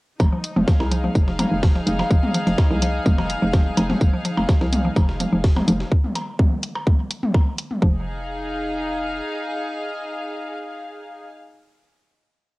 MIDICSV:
0, 0, Header, 1, 6, 480
1, 0, Start_track
1, 0, Key_signature, -4, "minor"
1, 0, Tempo, 476190
1, 204, Time_signature, 4, 2, 24, 8
1, 12690, End_track
2, 0, Start_track
2, 0, Title_t, "String section"
2, 0, Program_c, 0, 48
2, 204, Note_on_c, 0, 63, 72
2, 628, Note_on_c, 0, 77, 85
2, 644, Note_on_c, 0, 68, 68
2, 5962, Note_off_c, 0, 68, 0
2, 5963, Note_off_c, 0, 77, 0
2, 5964, Note_off_c, 0, 63, 0
2, 7883, Note_on_c, 0, 63, 73
2, 7959, Note_on_c, 0, 68, 73
2, 8033, Note_on_c, 0, 77, 77
2, 11303, Note_off_c, 0, 63, 0
2, 11380, Note_off_c, 0, 68, 0
2, 11454, Note_off_c, 0, 77, 0
2, 12690, End_track
3, 0, Start_track
3, 0, Title_t, "Synth arpeggio sound"
3, 0, Program_c, 1, 84
3, 202, Note_on_c, 1, 53, 79
3, 233, Note_off_c, 1, 53, 0
3, 328, Note_on_c, 1, 53, 70
3, 374, Note_off_c, 1, 53, 0
3, 569, Note_on_c, 1, 53, 71
3, 596, Note_off_c, 1, 53, 0
3, 682, Note_on_c, 1, 53, 81
3, 733, Note_off_c, 1, 53, 0
3, 922, Note_on_c, 1, 53, 72
3, 953, Note_off_c, 1, 53, 0
3, 1048, Note_on_c, 1, 53, 73
3, 1094, Note_off_c, 1, 53, 0
3, 1289, Note_on_c, 1, 53, 72
3, 1316, Note_off_c, 1, 53, 0
3, 1402, Note_on_c, 1, 53, 73
3, 1453, Note_off_c, 1, 53, 0
3, 1643, Note_on_c, 1, 53, 74
3, 1673, Note_off_c, 1, 53, 0
3, 1768, Note_on_c, 1, 53, 72
3, 1814, Note_off_c, 1, 53, 0
3, 2009, Note_on_c, 1, 53, 70
3, 2036, Note_off_c, 1, 53, 0
3, 2122, Note_on_c, 1, 53, 80
3, 2173, Note_off_c, 1, 53, 0
3, 2362, Note_on_c, 1, 53, 76
3, 2393, Note_off_c, 1, 53, 0
3, 2488, Note_on_c, 1, 53, 74
3, 2534, Note_off_c, 1, 53, 0
3, 2728, Note_on_c, 1, 53, 73
3, 2756, Note_off_c, 1, 53, 0
3, 2842, Note_on_c, 1, 53, 73
3, 2893, Note_off_c, 1, 53, 0
3, 3082, Note_on_c, 1, 53, 81
3, 3113, Note_off_c, 1, 53, 0
3, 3208, Note_on_c, 1, 53, 72
3, 3254, Note_off_c, 1, 53, 0
3, 3448, Note_on_c, 1, 53, 73
3, 3476, Note_off_c, 1, 53, 0
3, 3562, Note_on_c, 1, 53, 80
3, 3613, Note_off_c, 1, 53, 0
3, 3802, Note_on_c, 1, 53, 76
3, 3833, Note_off_c, 1, 53, 0
3, 3929, Note_on_c, 1, 53, 71
3, 3975, Note_off_c, 1, 53, 0
3, 4168, Note_on_c, 1, 53, 75
3, 4196, Note_off_c, 1, 53, 0
3, 4282, Note_on_c, 1, 53, 79
3, 4333, Note_off_c, 1, 53, 0
3, 4523, Note_on_c, 1, 53, 80
3, 4553, Note_off_c, 1, 53, 0
3, 4648, Note_on_c, 1, 53, 73
3, 4694, Note_off_c, 1, 53, 0
3, 4889, Note_on_c, 1, 53, 77
3, 4916, Note_off_c, 1, 53, 0
3, 5004, Note_on_c, 1, 53, 78
3, 5054, Note_off_c, 1, 53, 0
3, 5244, Note_on_c, 1, 53, 73
3, 5274, Note_off_c, 1, 53, 0
3, 5369, Note_on_c, 1, 53, 77
3, 5414, Note_off_c, 1, 53, 0
3, 5609, Note_on_c, 1, 53, 69
3, 5636, Note_off_c, 1, 53, 0
3, 5722, Note_on_c, 1, 53, 75
3, 5773, Note_off_c, 1, 53, 0
3, 7883, Note_on_c, 1, 53, 96
3, 8106, Note_off_c, 1, 53, 0
3, 12690, End_track
4, 0, Start_track
4, 0, Title_t, "FM bass"
4, 0, Program_c, 2, 39
4, 202, Note_on_c, 2, 29, 95
4, 285, Note_off_c, 2, 29, 0
4, 568, Note_on_c, 2, 29, 77
4, 643, Note_off_c, 2, 29, 0
4, 808, Note_on_c, 2, 36, 77
4, 1100, Note_off_c, 2, 36, 0
4, 1162, Note_on_c, 2, 29, 97
4, 1459, Note_off_c, 2, 29, 0
4, 1528, Note_on_c, 2, 29, 85
4, 1820, Note_off_c, 2, 29, 0
4, 1882, Note_on_c, 2, 29, 98
4, 2044, Note_off_c, 2, 29, 0
4, 2122, Note_on_c, 2, 29, 92
4, 2205, Note_off_c, 2, 29, 0
4, 2488, Note_on_c, 2, 29, 78
4, 2563, Note_off_c, 2, 29, 0
4, 2728, Note_on_c, 2, 36, 81
4, 3020, Note_off_c, 2, 36, 0
4, 3082, Note_on_c, 2, 29, 94
4, 3379, Note_off_c, 2, 29, 0
4, 3449, Note_on_c, 2, 29, 85
4, 3740, Note_off_c, 2, 29, 0
4, 3803, Note_on_c, 2, 29, 99
4, 3965, Note_off_c, 2, 29, 0
4, 4042, Note_on_c, 2, 29, 97
4, 4125, Note_off_c, 2, 29, 0
4, 4409, Note_on_c, 2, 29, 77
4, 4484, Note_off_c, 2, 29, 0
4, 4649, Note_on_c, 2, 36, 76
4, 4940, Note_off_c, 2, 36, 0
4, 5003, Note_on_c, 2, 29, 100
4, 5299, Note_off_c, 2, 29, 0
4, 5369, Note_on_c, 2, 29, 82
4, 5660, Note_off_c, 2, 29, 0
4, 5723, Note_on_c, 2, 29, 103
4, 5885, Note_off_c, 2, 29, 0
4, 7883, Note_on_c, 2, 29, 96
4, 9283, Note_off_c, 2, 29, 0
4, 12690, End_track
5, 0, Start_track
5, 0, Title_t, "Percussion blips"
5, 202, Note_on_c, 9, 56, 59
5, 303, Note_off_c, 9, 56, 0
5, 808, Note_on_c, 9, 56, 59
5, 909, Note_off_c, 9, 56, 0
5, 1402, Note_on_c, 9, 56, 62
5, 1503, Note_off_c, 9, 56, 0
5, 2009, Note_on_c, 9, 56, 58
5, 2109, Note_off_c, 9, 56, 0
5, 2602, Note_on_c, 9, 56, 62
5, 2703, Note_off_c, 9, 56, 0
5, 3208, Note_on_c, 9, 56, 59
5, 3309, Note_off_c, 9, 56, 0
5, 3802, Note_on_c, 9, 56, 61
5, 3903, Note_off_c, 9, 56, 0
5, 4408, Note_on_c, 9, 56, 59
5, 4509, Note_off_c, 9, 56, 0
5, 5003, Note_on_c, 9, 56, 58
5, 5104, Note_off_c, 9, 56, 0
5, 5608, Note_on_c, 9, 56, 60
5, 5709, Note_off_c, 9, 56, 0
5, 6202, Note_on_c, 9, 56, 60
5, 6303, Note_off_c, 9, 56, 0
5, 6808, Note_on_c, 9, 56, 60
5, 6909, Note_off_c, 9, 56, 0
5, 7403, Note_on_c, 9, 56, 59
5, 7503, Note_off_c, 9, 56, 0
5, 12690, End_track
6, 0, Start_track
6, 0, Title_t, "Drums"
6, 202, Note_on_c, 9, 36, 105
6, 202, Note_on_c, 9, 48, 42
6, 203, Note_on_c, 9, 54, 80
6, 303, Note_off_c, 9, 36, 0
6, 303, Note_off_c, 9, 48, 0
6, 304, Note_off_c, 9, 54, 0
6, 443, Note_on_c, 9, 42, 82
6, 443, Note_on_c, 9, 54, 60
6, 544, Note_off_c, 9, 42, 0
6, 544, Note_off_c, 9, 54, 0
6, 568, Note_on_c, 9, 48, 69
6, 669, Note_off_c, 9, 48, 0
6, 682, Note_on_c, 9, 36, 110
6, 682, Note_on_c, 9, 38, 104
6, 682, Note_on_c, 9, 54, 83
6, 783, Note_off_c, 9, 36, 0
6, 783, Note_off_c, 9, 38, 0
6, 783, Note_off_c, 9, 54, 0
6, 809, Note_on_c, 9, 38, 48
6, 909, Note_off_c, 9, 38, 0
6, 923, Note_on_c, 9, 42, 86
6, 923, Note_on_c, 9, 54, 64
6, 1024, Note_off_c, 9, 42, 0
6, 1024, Note_off_c, 9, 54, 0
6, 1048, Note_on_c, 9, 48, 41
6, 1149, Note_off_c, 9, 48, 0
6, 1162, Note_on_c, 9, 36, 101
6, 1163, Note_on_c, 9, 54, 81
6, 1263, Note_off_c, 9, 36, 0
6, 1264, Note_off_c, 9, 54, 0
6, 1289, Note_on_c, 9, 38, 47
6, 1390, Note_off_c, 9, 38, 0
6, 1402, Note_on_c, 9, 48, 73
6, 1403, Note_on_c, 9, 42, 86
6, 1403, Note_on_c, 9, 54, 66
6, 1503, Note_off_c, 9, 48, 0
6, 1504, Note_off_c, 9, 42, 0
6, 1504, Note_off_c, 9, 54, 0
6, 1642, Note_on_c, 9, 36, 108
6, 1643, Note_on_c, 9, 38, 110
6, 1643, Note_on_c, 9, 46, 74
6, 1743, Note_off_c, 9, 36, 0
6, 1744, Note_off_c, 9, 38, 0
6, 1744, Note_off_c, 9, 46, 0
6, 1769, Note_on_c, 9, 38, 43
6, 1870, Note_off_c, 9, 38, 0
6, 1883, Note_on_c, 9, 42, 81
6, 1883, Note_on_c, 9, 48, 42
6, 1884, Note_on_c, 9, 54, 61
6, 1983, Note_off_c, 9, 48, 0
6, 1984, Note_off_c, 9, 42, 0
6, 1984, Note_off_c, 9, 54, 0
6, 2010, Note_on_c, 9, 38, 53
6, 2110, Note_off_c, 9, 38, 0
6, 2122, Note_on_c, 9, 36, 114
6, 2123, Note_on_c, 9, 54, 81
6, 2223, Note_off_c, 9, 36, 0
6, 2224, Note_off_c, 9, 54, 0
6, 2249, Note_on_c, 9, 48, 78
6, 2349, Note_off_c, 9, 48, 0
6, 2363, Note_on_c, 9, 42, 87
6, 2363, Note_on_c, 9, 54, 63
6, 2464, Note_off_c, 9, 42, 0
6, 2464, Note_off_c, 9, 54, 0
6, 2490, Note_on_c, 9, 42, 42
6, 2590, Note_off_c, 9, 42, 0
6, 2602, Note_on_c, 9, 36, 116
6, 2603, Note_on_c, 9, 38, 109
6, 2603, Note_on_c, 9, 54, 82
6, 2703, Note_off_c, 9, 36, 0
6, 2704, Note_off_c, 9, 38, 0
6, 2704, Note_off_c, 9, 54, 0
6, 2728, Note_on_c, 9, 48, 43
6, 2829, Note_off_c, 9, 48, 0
6, 2843, Note_on_c, 9, 42, 95
6, 2843, Note_on_c, 9, 54, 64
6, 2944, Note_off_c, 9, 42, 0
6, 2944, Note_off_c, 9, 54, 0
6, 3082, Note_on_c, 9, 36, 110
6, 3082, Note_on_c, 9, 48, 76
6, 3083, Note_on_c, 9, 54, 83
6, 3183, Note_off_c, 9, 36, 0
6, 3183, Note_off_c, 9, 48, 0
6, 3183, Note_off_c, 9, 54, 0
6, 3208, Note_on_c, 9, 38, 43
6, 3309, Note_off_c, 9, 38, 0
6, 3323, Note_on_c, 9, 42, 90
6, 3323, Note_on_c, 9, 54, 64
6, 3423, Note_off_c, 9, 54, 0
6, 3424, Note_off_c, 9, 42, 0
6, 3562, Note_on_c, 9, 36, 112
6, 3562, Note_on_c, 9, 48, 45
6, 3563, Note_on_c, 9, 38, 108
6, 3563, Note_on_c, 9, 54, 83
6, 3663, Note_off_c, 9, 36, 0
6, 3663, Note_off_c, 9, 48, 0
6, 3664, Note_off_c, 9, 38, 0
6, 3664, Note_off_c, 9, 54, 0
6, 3803, Note_on_c, 9, 42, 85
6, 3803, Note_on_c, 9, 54, 61
6, 3903, Note_off_c, 9, 54, 0
6, 3904, Note_off_c, 9, 42, 0
6, 3928, Note_on_c, 9, 48, 76
6, 3929, Note_on_c, 9, 38, 44
6, 4029, Note_off_c, 9, 48, 0
6, 4030, Note_off_c, 9, 38, 0
6, 4042, Note_on_c, 9, 36, 110
6, 4043, Note_on_c, 9, 54, 83
6, 4143, Note_off_c, 9, 36, 0
6, 4143, Note_off_c, 9, 54, 0
6, 4283, Note_on_c, 9, 42, 90
6, 4283, Note_on_c, 9, 54, 64
6, 4384, Note_off_c, 9, 42, 0
6, 4384, Note_off_c, 9, 54, 0
6, 4408, Note_on_c, 9, 48, 44
6, 4509, Note_off_c, 9, 48, 0
6, 4522, Note_on_c, 9, 36, 117
6, 4523, Note_on_c, 9, 38, 114
6, 4523, Note_on_c, 9, 54, 88
6, 4623, Note_off_c, 9, 36, 0
6, 4624, Note_off_c, 9, 38, 0
6, 4624, Note_off_c, 9, 54, 0
6, 4649, Note_on_c, 9, 38, 52
6, 4749, Note_off_c, 9, 38, 0
6, 4762, Note_on_c, 9, 48, 81
6, 4763, Note_on_c, 9, 42, 93
6, 4763, Note_on_c, 9, 54, 64
6, 4863, Note_off_c, 9, 48, 0
6, 4864, Note_off_c, 9, 42, 0
6, 4864, Note_off_c, 9, 54, 0
6, 5002, Note_on_c, 9, 36, 118
6, 5003, Note_on_c, 9, 54, 81
6, 5103, Note_off_c, 9, 36, 0
6, 5104, Note_off_c, 9, 54, 0
6, 5129, Note_on_c, 9, 38, 48
6, 5230, Note_off_c, 9, 38, 0
6, 5243, Note_on_c, 9, 42, 94
6, 5243, Note_on_c, 9, 48, 44
6, 5243, Note_on_c, 9, 54, 66
6, 5344, Note_off_c, 9, 42, 0
6, 5344, Note_off_c, 9, 48, 0
6, 5344, Note_off_c, 9, 54, 0
6, 5482, Note_on_c, 9, 36, 116
6, 5483, Note_on_c, 9, 38, 117
6, 5483, Note_on_c, 9, 46, 78
6, 5583, Note_off_c, 9, 36, 0
6, 5583, Note_off_c, 9, 38, 0
6, 5583, Note_off_c, 9, 46, 0
6, 5608, Note_on_c, 9, 48, 78
6, 5609, Note_on_c, 9, 38, 46
6, 5709, Note_off_c, 9, 38, 0
6, 5709, Note_off_c, 9, 48, 0
6, 5723, Note_on_c, 9, 42, 89
6, 5723, Note_on_c, 9, 54, 66
6, 5824, Note_off_c, 9, 42, 0
6, 5824, Note_off_c, 9, 54, 0
6, 5849, Note_on_c, 9, 38, 56
6, 5950, Note_off_c, 9, 38, 0
6, 5962, Note_on_c, 9, 36, 113
6, 6063, Note_off_c, 9, 36, 0
6, 6088, Note_on_c, 9, 48, 47
6, 6189, Note_off_c, 9, 48, 0
6, 6203, Note_on_c, 9, 42, 92
6, 6304, Note_off_c, 9, 42, 0
6, 6442, Note_on_c, 9, 36, 121
6, 6442, Note_on_c, 9, 48, 79
6, 6543, Note_off_c, 9, 36, 0
6, 6543, Note_off_c, 9, 48, 0
6, 6683, Note_on_c, 9, 42, 97
6, 6784, Note_off_c, 9, 42, 0
6, 6922, Note_on_c, 9, 36, 117
6, 6922, Note_on_c, 9, 48, 43
6, 7023, Note_off_c, 9, 36, 0
6, 7023, Note_off_c, 9, 48, 0
6, 7163, Note_on_c, 9, 42, 97
6, 7264, Note_off_c, 9, 42, 0
6, 7289, Note_on_c, 9, 48, 80
6, 7389, Note_off_c, 9, 48, 0
6, 7403, Note_on_c, 9, 36, 115
6, 7503, Note_off_c, 9, 36, 0
6, 7643, Note_on_c, 9, 42, 91
6, 7744, Note_off_c, 9, 42, 0
6, 7769, Note_on_c, 9, 48, 44
6, 7869, Note_off_c, 9, 48, 0
6, 7883, Note_on_c, 9, 36, 100
6, 7984, Note_off_c, 9, 36, 0
6, 12690, End_track
0, 0, End_of_file